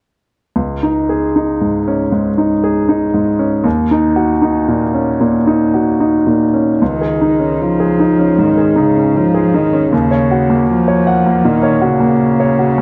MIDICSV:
0, 0, Header, 1, 3, 480
1, 0, Start_track
1, 0, Tempo, 786370
1, 344, Time_signature, 4, 2, 24, 8
1, 1300, Tempo, 766284
1, 3220, Tempo, 798935
1, 4660, Tempo, 768246
1, 7924, End_track
2, 0, Start_track
2, 0, Title_t, "Grand piano"
2, 0, Program_c, 0, 0
2, 341, Note_on_c, 0, 37, 28
2, 455, Control_c, 0, 64, 127
2, 507, Note_on_c, 0, 63, 21
2, 668, Note_on_c, 0, 68, 23
2, 762, Note_off_c, 0, 63, 0
2, 830, Note_on_c, 0, 63, 28
2, 922, Note_off_c, 0, 68, 0
2, 985, Note_on_c, 0, 44, 23
2, 1082, Note_off_c, 0, 63, 0
2, 1144, Note_on_c, 0, 61, 26
2, 1238, Note_off_c, 0, 44, 0
2, 1275, Note_off_c, 0, 37, 0
2, 1294, Note_on_c, 0, 44, 28
2, 1398, Note_off_c, 0, 61, 0
2, 1457, Note_on_c, 0, 63, 28
2, 1555, Note_off_c, 0, 44, 0
2, 1617, Note_on_c, 0, 68, 29
2, 1714, Note_off_c, 0, 63, 0
2, 1774, Note_on_c, 0, 63, 29
2, 1872, Note_off_c, 0, 68, 0
2, 1932, Note_on_c, 0, 44, 31
2, 2028, Note_off_c, 0, 63, 0
2, 2089, Note_on_c, 0, 61, 28
2, 2186, Note_off_c, 0, 44, 0
2, 2244, Note_on_c, 0, 39, 41
2, 2249, Note_off_c, 0, 61, 0
2, 2263, Control_c, 0, 64, 0
2, 2372, Control_c, 0, 64, 127
2, 2415, Note_on_c, 0, 63, 34
2, 2572, Note_on_c, 0, 66, 33
2, 2670, Note_off_c, 0, 63, 0
2, 2735, Note_on_c, 0, 63, 34
2, 2829, Note_off_c, 0, 66, 0
2, 2899, Note_on_c, 0, 46, 30
2, 2993, Note_off_c, 0, 63, 0
2, 3060, Note_on_c, 0, 61, 27
2, 3158, Note_off_c, 0, 46, 0
2, 3192, Note_off_c, 0, 39, 0
2, 3226, Note_on_c, 0, 46, 29
2, 3317, Note_off_c, 0, 61, 0
2, 3386, Note_on_c, 0, 63, 33
2, 3477, Note_off_c, 0, 46, 0
2, 3548, Note_on_c, 0, 66, 27
2, 3638, Note_off_c, 0, 63, 0
2, 3706, Note_on_c, 0, 63, 26
2, 3802, Note_off_c, 0, 66, 0
2, 3864, Note_on_c, 0, 46, 22
2, 3965, Note_off_c, 0, 63, 0
2, 4025, Note_on_c, 0, 61, 21
2, 4125, Note_off_c, 0, 46, 0
2, 4187, Note_off_c, 0, 61, 0
2, 4195, Note_on_c, 0, 37, 35
2, 4199, Control_c, 0, 64, 0
2, 4311, Control_c, 0, 64, 127
2, 4312, Note_on_c, 0, 68, 27
2, 4432, Note_on_c, 0, 63, 22
2, 4499, Note_off_c, 0, 68, 0
2, 4543, Note_on_c, 0, 61, 23
2, 4618, Note_off_c, 0, 63, 0
2, 4789, Note_on_c, 0, 68, 25
2, 4912, Note_on_c, 0, 63, 25
2, 4929, Note_off_c, 0, 61, 0
2, 4980, Note_off_c, 0, 68, 0
2, 5035, Note_on_c, 0, 61, 27
2, 5102, Note_off_c, 0, 63, 0
2, 5125, Note_off_c, 0, 37, 0
2, 5155, Note_on_c, 0, 44, 29
2, 5223, Note_off_c, 0, 61, 0
2, 5275, Note_on_c, 0, 68, 27
2, 5344, Note_off_c, 0, 44, 0
2, 5390, Note_on_c, 0, 63, 27
2, 5464, Note_off_c, 0, 68, 0
2, 5515, Note_on_c, 0, 61, 25
2, 5583, Note_off_c, 0, 63, 0
2, 5755, Note_on_c, 0, 68, 30
2, 5878, Note_on_c, 0, 63, 26
2, 5899, Note_off_c, 0, 61, 0
2, 5947, Note_off_c, 0, 68, 0
2, 5996, Note_on_c, 0, 61, 32
2, 6068, Note_off_c, 0, 63, 0
2, 6115, Note_off_c, 0, 61, 0
2, 6117, Note_on_c, 0, 39, 42
2, 6126, Control_c, 0, 64, 0
2, 6227, Control_c, 0, 64, 127
2, 6235, Note_on_c, 0, 73, 32
2, 6360, Note_on_c, 0, 66, 31
2, 6426, Note_off_c, 0, 73, 0
2, 6476, Note_on_c, 0, 58, 33
2, 6547, Note_off_c, 0, 66, 0
2, 6715, Note_on_c, 0, 73, 34
2, 6833, Note_on_c, 0, 78, 35
2, 6852, Note_off_c, 0, 58, 0
2, 6900, Note_off_c, 0, 73, 0
2, 6954, Note_on_c, 0, 58, 31
2, 7018, Note_off_c, 0, 78, 0
2, 7039, Note_off_c, 0, 39, 0
2, 7071, Note_on_c, 0, 46, 35
2, 7138, Note_off_c, 0, 58, 0
2, 7184, Note_on_c, 0, 73, 36
2, 7256, Note_off_c, 0, 46, 0
2, 7300, Note_on_c, 0, 66, 38
2, 7373, Note_off_c, 0, 73, 0
2, 7416, Note_on_c, 0, 58, 32
2, 7491, Note_off_c, 0, 66, 0
2, 7663, Note_on_c, 0, 73, 32
2, 7783, Note_on_c, 0, 66, 31
2, 7802, Note_off_c, 0, 58, 0
2, 7854, Note_off_c, 0, 73, 0
2, 7901, Note_on_c, 0, 58, 37
2, 7924, Note_off_c, 0, 58, 0
2, 7924, Note_off_c, 0, 66, 0
2, 7924, End_track
3, 0, Start_track
3, 0, Title_t, "Cello"
3, 0, Program_c, 1, 42
3, 4201, Note_on_c, 1, 51, 33
3, 4673, Note_on_c, 1, 53, 34
3, 4683, Note_off_c, 1, 51, 0
3, 5158, Note_on_c, 1, 51, 36
3, 5167, Note_off_c, 1, 53, 0
3, 5399, Note_on_c, 1, 49, 37
3, 5408, Note_off_c, 1, 51, 0
3, 5645, Note_on_c, 1, 53, 34
3, 5654, Note_off_c, 1, 49, 0
3, 5882, Note_on_c, 1, 51, 39
3, 5891, Note_off_c, 1, 53, 0
3, 6114, Note_off_c, 1, 51, 0
3, 6118, Note_on_c, 1, 49, 39
3, 6584, Note_off_c, 1, 49, 0
3, 6608, Note_on_c, 1, 53, 42
3, 7068, Note_on_c, 1, 51, 45
3, 7078, Note_off_c, 1, 53, 0
3, 7298, Note_on_c, 1, 49, 43
3, 7308, Note_off_c, 1, 51, 0
3, 7924, Note_off_c, 1, 49, 0
3, 7924, End_track
0, 0, End_of_file